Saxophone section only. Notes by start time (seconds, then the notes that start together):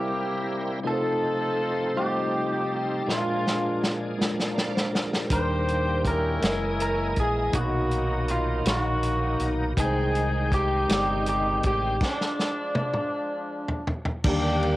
Already playing: A#3 E4 G4
0.87 D#4 F4 A4
1.99 D#4 G4
3.11 G#3 D4 F4
5.33 G4 C5
6.08 C#4 E4 A#4
6.83 A#4
7.20 G#4
7.57 A#3 D#4 F#4
8.31 F4
8.67 A#3 D#4 F#4
9.79 D#4 G#4
10.53 D#4 G4
11.28 G4
11.66 G4
12.02 F3 G#3 D4
14.28 A#3 D4 G4